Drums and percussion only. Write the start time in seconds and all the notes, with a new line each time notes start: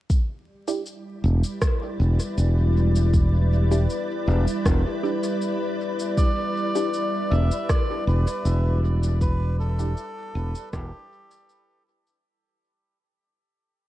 0.10 kick, shaker
0.68 shaker
0.86 shaker
1.44 shaker
1.62 kick, cross-stick, shaker
2.19 shaker
2.38 shaker
2.96 shaker
3.14 kick, shaker
3.72 shaker
3.90 shaker
4.48 shaker
4.66 kick, cross-stick, shaker
5.23 shaker
5.42 shaker
5.99 shaker
6.17 kick, shaker
6.75 shaker
6.94 shaker
7.51 shaker
7.69 kick, cross-stick, shaker
8.27 shaker
8.45 shaker
9.03 shaker
9.21 kick, shaker
9.79 shaker
9.97 shaker
10.55 shaker
10.73 kick, cross-stick, shaker
11.31 shaker
11.49 shaker
12.07 shaker